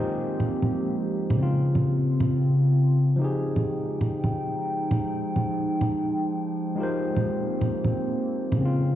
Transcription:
0, 0, Header, 1, 4, 480
1, 0, Start_track
1, 0, Key_signature, -4, "minor"
1, 0, Tempo, 451128
1, 1480, Time_signature, 4, 2, 24, 8
1, 9527, End_track
2, 0, Start_track
2, 0, Title_t, "Tine electric piano"
2, 0, Program_c, 0, 4
2, 0, Control_c, 0, 64, 127
2, 0, Note_on_c, 0, 56, 66
2, 0, Note_on_c, 0, 63, 56
2, 0, Note_on_c, 0, 65, 61
2, 0, Note_on_c, 0, 67, 58
2, 0, Note_on_c, 0, 70, 58
2, 0, Note_on_c, 0, 72, 70
2, 1432, Note_on_c, 0, 49, 66
2, 1437, Note_off_c, 0, 56, 0
2, 1446, Note_off_c, 0, 63, 0
2, 1453, Note_off_c, 0, 65, 0
2, 1463, Note_off_c, 0, 67, 0
2, 1471, Note_off_c, 0, 70, 0
2, 1473, Note_on_c, 0, 60, 58
2, 1479, Note_off_c, 0, 72, 0
2, 1496, Control_c, 0, 64, 0
2, 1516, Note_on_c, 0, 65, 72
2, 1693, Control_c, 0, 64, 127
2, 3354, Note_off_c, 0, 49, 0
2, 3363, Note_on_c, 0, 53, 66
2, 3374, Note_off_c, 0, 60, 0
2, 3393, Note_on_c, 0, 63, 61
2, 3396, Note_off_c, 0, 65, 0
2, 3414, Control_c, 0, 64, 0
2, 3421, Note_on_c, 0, 67, 62
2, 3450, Note_on_c, 0, 68, 70
2, 3583, Control_c, 0, 64, 127
2, 7188, Note_on_c, 0, 56, 65
2, 7189, Note_off_c, 0, 63, 0
2, 7200, Note_off_c, 0, 53, 0
2, 7202, Note_on_c, 0, 63, 61
2, 7216, Note_on_c, 0, 65, 60
2, 7225, Note_off_c, 0, 67, 0
2, 7237, Note_on_c, 0, 67, 62
2, 7243, Note_off_c, 0, 68, 0
2, 7253, Note_on_c, 0, 70, 58
2, 7254, Control_c, 0, 64, 0
2, 7270, Note_on_c, 0, 72, 75
2, 7423, Control_c, 0, 64, 127
2, 9112, Note_off_c, 0, 56, 0
2, 9118, Note_on_c, 0, 49, 67
2, 9119, Note_off_c, 0, 63, 0
2, 9126, Note_off_c, 0, 65, 0
2, 9137, Note_off_c, 0, 67, 0
2, 9144, Note_off_c, 0, 70, 0
2, 9153, Note_off_c, 0, 72, 0
2, 9161, Note_on_c, 0, 60, 61
2, 9174, Control_c, 0, 64, 0
2, 9207, Note_on_c, 0, 65, 73
2, 9330, Control_c, 0, 64, 127
2, 9527, Note_off_c, 0, 49, 0
2, 9527, Note_off_c, 0, 60, 0
2, 9527, Note_off_c, 0, 65, 0
2, 9527, End_track
3, 0, Start_track
3, 0, Title_t, "Ambient pad"
3, 0, Program_c, 1, 92
3, 0, Note_on_c, 1, 53, 75
3, 0, Note_on_c, 1, 56, 68
3, 0, Note_on_c, 1, 58, 69
3, 0, Note_on_c, 1, 60, 68
3, 0, Note_on_c, 1, 67, 84
3, 1454, Note_off_c, 1, 60, 0
3, 1463, Note_off_c, 1, 53, 0
3, 1463, Note_off_c, 1, 56, 0
3, 1463, Note_off_c, 1, 67, 0
3, 1464, Note_off_c, 1, 58, 0
3, 1466, Note_on_c, 1, 49, 75
3, 1467, Note_on_c, 1, 60, 68
3, 1468, Note_on_c, 1, 65, 79
3, 3374, Note_off_c, 1, 49, 0
3, 3374, Note_off_c, 1, 60, 0
3, 3375, Note_off_c, 1, 65, 0
3, 3401, Note_on_c, 1, 53, 76
3, 3403, Note_on_c, 1, 56, 70
3, 3404, Note_on_c, 1, 79, 85
3, 3407, Note_on_c, 1, 63, 71
3, 7205, Note_off_c, 1, 63, 0
3, 7226, Note_on_c, 1, 60, 68
3, 7230, Note_on_c, 1, 58, 71
3, 9118, Note_off_c, 1, 53, 0
3, 9119, Note_off_c, 1, 56, 0
3, 9120, Note_off_c, 1, 79, 0
3, 9136, Note_off_c, 1, 58, 0
3, 9149, Note_on_c, 1, 49, 77
3, 9156, Note_on_c, 1, 65, 84
3, 9527, Note_off_c, 1, 49, 0
3, 9527, Note_off_c, 1, 60, 0
3, 9527, Note_off_c, 1, 65, 0
3, 9527, End_track
4, 0, Start_track
4, 0, Title_t, "Drums"
4, 424, Note_on_c, 9, 61, 46
4, 531, Note_off_c, 9, 61, 0
4, 664, Note_on_c, 9, 61, 45
4, 770, Note_off_c, 9, 61, 0
4, 1385, Note_on_c, 9, 61, 60
4, 1492, Note_off_c, 9, 61, 0
4, 1864, Note_on_c, 9, 61, 44
4, 1970, Note_off_c, 9, 61, 0
4, 2343, Note_on_c, 9, 61, 46
4, 2450, Note_off_c, 9, 61, 0
4, 3790, Note_on_c, 9, 61, 43
4, 3896, Note_off_c, 9, 61, 0
4, 4266, Note_on_c, 9, 61, 42
4, 4372, Note_off_c, 9, 61, 0
4, 4509, Note_on_c, 9, 61, 44
4, 4615, Note_off_c, 9, 61, 0
4, 5224, Note_on_c, 9, 61, 54
4, 5330, Note_off_c, 9, 61, 0
4, 5703, Note_on_c, 9, 61, 42
4, 5809, Note_off_c, 9, 61, 0
4, 6182, Note_on_c, 9, 61, 42
4, 6289, Note_off_c, 9, 61, 0
4, 7623, Note_on_c, 9, 61, 42
4, 7729, Note_off_c, 9, 61, 0
4, 8100, Note_on_c, 9, 61, 44
4, 8206, Note_off_c, 9, 61, 0
4, 8347, Note_on_c, 9, 61, 43
4, 8453, Note_off_c, 9, 61, 0
4, 9065, Note_on_c, 9, 61, 54
4, 9171, Note_off_c, 9, 61, 0
4, 9527, End_track
0, 0, End_of_file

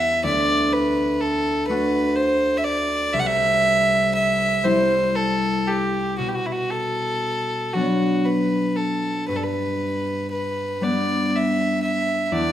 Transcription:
0, 0, Header, 1, 3, 480
1, 0, Start_track
1, 0, Tempo, 981997
1, 109, Time_signature, 6, 3, 24, 8
1, 2027, Tempo, 1027397
1, 4907, Tempo, 1001669
1, 5965, End_track
2, 0, Start_track
2, 0, Title_t, "Fiddle"
2, 0, Program_c, 0, 110
2, 0, Note_on_c, 0, 76, 63
2, 116, Note_off_c, 0, 76, 0
2, 121, Note_on_c, 0, 74, 69
2, 357, Note_on_c, 0, 71, 61
2, 365, Note_off_c, 0, 74, 0
2, 591, Note_on_c, 0, 69, 65
2, 598, Note_off_c, 0, 71, 0
2, 816, Note_off_c, 0, 69, 0
2, 819, Note_on_c, 0, 71, 67
2, 1055, Note_on_c, 0, 72, 71
2, 1062, Note_off_c, 0, 71, 0
2, 1259, Note_on_c, 0, 76, 52
2, 1266, Note_off_c, 0, 72, 0
2, 1292, Note_on_c, 0, 74, 69
2, 1299, Note_off_c, 0, 76, 0
2, 1532, Note_on_c, 0, 76, 73
2, 1539, Note_off_c, 0, 74, 0
2, 1561, Note_on_c, 0, 78, 64
2, 1568, Note_off_c, 0, 76, 0
2, 1592, Note_on_c, 0, 76, 79
2, 1599, Note_off_c, 0, 78, 0
2, 2020, Note_off_c, 0, 76, 0
2, 2028, Note_on_c, 0, 76, 75
2, 2259, Note_on_c, 0, 72, 71
2, 2266, Note_off_c, 0, 76, 0
2, 2501, Note_on_c, 0, 69, 65
2, 2508, Note_off_c, 0, 72, 0
2, 2740, Note_on_c, 0, 67, 56
2, 2747, Note_off_c, 0, 69, 0
2, 2976, Note_off_c, 0, 67, 0
2, 2978, Note_on_c, 0, 66, 56
2, 3027, Note_on_c, 0, 67, 39
2, 3034, Note_off_c, 0, 66, 0
2, 3058, Note_on_c, 0, 66, 61
2, 3065, Note_off_c, 0, 67, 0
2, 3110, Note_on_c, 0, 64, 38
2, 3117, Note_off_c, 0, 66, 0
2, 3138, Note_on_c, 0, 66, 56
2, 3145, Note_off_c, 0, 64, 0
2, 3222, Note_on_c, 0, 69, 64
2, 3229, Note_off_c, 0, 66, 0
2, 3703, Note_on_c, 0, 66, 52
2, 3710, Note_off_c, 0, 69, 0
2, 3943, Note_on_c, 0, 71, 50
2, 3950, Note_off_c, 0, 66, 0
2, 4184, Note_on_c, 0, 69, 45
2, 4191, Note_off_c, 0, 71, 0
2, 4424, Note_off_c, 0, 69, 0
2, 4426, Note_on_c, 0, 71, 50
2, 4464, Note_on_c, 0, 69, 41
2, 4471, Note_off_c, 0, 71, 0
2, 4496, Note_on_c, 0, 71, 52
2, 4503, Note_off_c, 0, 69, 0
2, 4906, Note_off_c, 0, 71, 0
2, 4909, Note_on_c, 0, 71, 51
2, 5157, Note_on_c, 0, 74, 56
2, 5164, Note_off_c, 0, 71, 0
2, 5407, Note_on_c, 0, 76, 55
2, 5414, Note_off_c, 0, 74, 0
2, 5632, Note_off_c, 0, 76, 0
2, 5635, Note_on_c, 0, 76, 53
2, 5840, Note_off_c, 0, 76, 0
2, 5840, Note_on_c, 0, 76, 39
2, 5870, Note_on_c, 0, 74, 62
2, 5877, Note_off_c, 0, 76, 0
2, 5965, Note_off_c, 0, 74, 0
2, 5965, End_track
3, 0, Start_track
3, 0, Title_t, "Harp"
3, 0, Program_c, 1, 46
3, 0, Note_on_c, 1, 40, 41
3, 0, Note_on_c, 1, 59, 32
3, 0, Note_on_c, 1, 64, 31
3, 0, Note_on_c, 1, 67, 35
3, 116, Note_on_c, 1, 38, 44
3, 133, Note_off_c, 1, 40, 0
3, 530, Note_off_c, 1, 67, 0
3, 653, Note_off_c, 1, 64, 0
3, 827, Note_on_c, 1, 57, 36
3, 829, Note_on_c, 1, 62, 31
3, 831, Note_on_c, 1, 66, 39
3, 890, Note_off_c, 1, 59, 0
3, 1533, Note_on_c, 1, 36, 49
3, 1561, Note_off_c, 1, 38, 0
3, 2022, Note_off_c, 1, 66, 0
3, 2190, Note_off_c, 1, 62, 0
3, 2256, Note_on_c, 1, 55, 38
3, 2261, Note_on_c, 1, 64, 39
3, 2264, Note_on_c, 1, 60, 33
3, 2435, Note_off_c, 1, 57, 0
3, 2980, Note_on_c, 1, 47, 43
3, 3004, Note_off_c, 1, 36, 0
3, 3004, Note_off_c, 1, 55, 0
3, 3008, Note_off_c, 1, 60, 0
3, 3481, Note_off_c, 1, 64, 0
3, 3709, Note_on_c, 1, 54, 29
3, 3711, Note_on_c, 1, 59, 26
3, 3712, Note_on_c, 1, 62, 32
3, 4428, Note_on_c, 1, 43, 35
3, 4450, Note_off_c, 1, 47, 0
3, 4450, Note_off_c, 1, 54, 0
3, 5023, Note_off_c, 1, 62, 0
3, 5147, Note_on_c, 1, 55, 28
3, 5150, Note_off_c, 1, 59, 0
3, 5152, Note_on_c, 1, 59, 26
3, 5154, Note_on_c, 1, 62, 31
3, 5868, Note_on_c, 1, 40, 40
3, 5893, Note_off_c, 1, 43, 0
3, 5893, Note_off_c, 1, 55, 0
3, 5965, Note_off_c, 1, 40, 0
3, 5965, Note_off_c, 1, 59, 0
3, 5965, Note_off_c, 1, 62, 0
3, 5965, End_track
0, 0, End_of_file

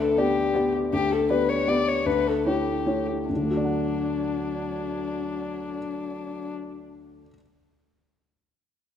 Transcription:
0, 0, Header, 1, 4, 480
1, 0, Start_track
1, 0, Key_signature, 2, "major"
1, 0, Tempo, 381679
1, 1157, Time_signature, 3, 2, 24, 8
1, 3088, Tempo, 412088
1, 10668, End_track
2, 0, Start_track
2, 0, Title_t, "Violin"
2, 0, Program_c, 0, 40
2, 0, Note_on_c, 0, 69, 56
2, 224, Note_on_c, 0, 67, 53
2, 243, Note_off_c, 0, 69, 0
2, 928, Note_off_c, 0, 67, 0
2, 1168, Note_on_c, 0, 67, 70
2, 1411, Note_on_c, 0, 69, 62
2, 1430, Note_off_c, 0, 67, 0
2, 1638, Note_off_c, 0, 69, 0
2, 1650, Note_on_c, 0, 71, 59
2, 1873, Note_on_c, 0, 73, 59
2, 1891, Note_off_c, 0, 71, 0
2, 2117, Note_on_c, 0, 74, 63
2, 2136, Note_off_c, 0, 73, 0
2, 2362, Note_on_c, 0, 73, 56
2, 2381, Note_off_c, 0, 74, 0
2, 2594, Note_on_c, 0, 71, 66
2, 2613, Note_off_c, 0, 73, 0
2, 2859, Note_on_c, 0, 69, 53
2, 2878, Note_off_c, 0, 71, 0
2, 3098, Note_off_c, 0, 69, 0
2, 3107, Note_on_c, 0, 67, 39
2, 3812, Note_off_c, 0, 67, 0
2, 4069, Note_on_c, 0, 62, 37
2, 7828, Note_off_c, 0, 62, 0
2, 10668, End_track
3, 0, Start_track
3, 0, Title_t, "Grand piano"
3, 0, Program_c, 1, 0
3, 0, Control_c, 1, 64, 127
3, 0, Note_on_c, 1, 38, 46
3, 193, Note_off_c, 1, 38, 0
3, 218, Note_on_c, 1, 59, 33
3, 227, Note_on_c, 1, 74, 40
3, 228, Note_on_c, 1, 67, 33
3, 639, Note_off_c, 1, 59, 0
3, 644, Note_off_c, 1, 74, 0
3, 645, Note_off_c, 1, 67, 0
3, 697, Note_on_c, 1, 59, 36
3, 700, Note_on_c, 1, 67, 37
3, 706, Note_on_c, 1, 74, 38
3, 1119, Note_off_c, 1, 59, 0
3, 1121, Note_off_c, 1, 67, 0
3, 1124, Note_off_c, 1, 74, 0
3, 1167, Note_on_c, 1, 38, 44
3, 1180, Control_c, 1, 64, 0
3, 1361, Control_c, 1, 64, 127
3, 1621, Note_off_c, 1, 38, 0
3, 1633, Note_on_c, 1, 59, 33
3, 1640, Note_on_c, 1, 67, 34
3, 1640, Note_on_c, 1, 74, 36
3, 2058, Note_off_c, 1, 59, 0
3, 2062, Note_off_c, 1, 67, 0
3, 2062, Note_off_c, 1, 74, 0
3, 2105, Note_on_c, 1, 59, 37
3, 2111, Note_on_c, 1, 67, 32
3, 2114, Note_on_c, 1, 74, 36
3, 2543, Note_off_c, 1, 59, 0
3, 2546, Note_off_c, 1, 67, 0
3, 2548, Note_off_c, 1, 74, 0
3, 2590, Note_on_c, 1, 38, 40
3, 2614, Control_c, 1, 64, 0
3, 2844, Control_c, 1, 64, 127
3, 3074, Note_off_c, 1, 38, 0
3, 3095, Note_on_c, 1, 57, 26
3, 3100, Note_on_c, 1, 64, 28
3, 3104, Note_on_c, 1, 73, 29
3, 3523, Note_off_c, 1, 57, 0
3, 3526, Note_off_c, 1, 64, 0
3, 3528, Note_off_c, 1, 73, 0
3, 3562, Note_on_c, 1, 57, 25
3, 3569, Note_on_c, 1, 64, 27
3, 3576, Note_on_c, 1, 73, 30
3, 4018, Note_off_c, 1, 57, 0
3, 4021, Note_off_c, 1, 64, 0
3, 4025, Note_off_c, 1, 73, 0
3, 4062, Note_on_c, 1, 38, 25
3, 4092, Control_c, 1, 64, 0
3, 4143, Note_on_c, 1, 50, 26
3, 4226, Note_on_c, 1, 57, 27
3, 4284, Control_c, 1, 64, 127
3, 4308, Note_on_c, 1, 66, 24
3, 4389, Note_on_c, 1, 74, 26
3, 4468, Note_on_c, 1, 78, 26
3, 6964, Control_c, 1, 64, 0
3, 8639, Note_off_c, 1, 38, 0
3, 8680, Note_off_c, 1, 50, 0
3, 8721, Note_off_c, 1, 57, 0
3, 8762, Note_off_c, 1, 66, 0
3, 8803, Note_off_c, 1, 74, 0
3, 8842, Note_off_c, 1, 78, 0
3, 10668, End_track
4, 0, Start_track
4, 0, Title_t, "Viola"
4, 0, Program_c, 2, 41
4, 206, Note_on_c, 2, 59, 44
4, 557, Note_off_c, 2, 59, 0
4, 682, Note_on_c, 2, 59, 46
4, 1036, Note_off_c, 2, 59, 0
4, 1639, Note_on_c, 2, 59, 46
4, 1986, Note_off_c, 2, 59, 0
4, 2108, Note_on_c, 2, 59, 43
4, 2467, Note_off_c, 2, 59, 0
4, 3095, Note_on_c, 2, 61, 35
4, 3446, Note_off_c, 2, 61, 0
4, 3565, Note_on_c, 2, 61, 33
4, 3940, Note_off_c, 2, 61, 0
4, 4064, Note_on_c, 2, 54, 33
4, 7825, Note_off_c, 2, 54, 0
4, 10668, End_track
0, 0, End_of_file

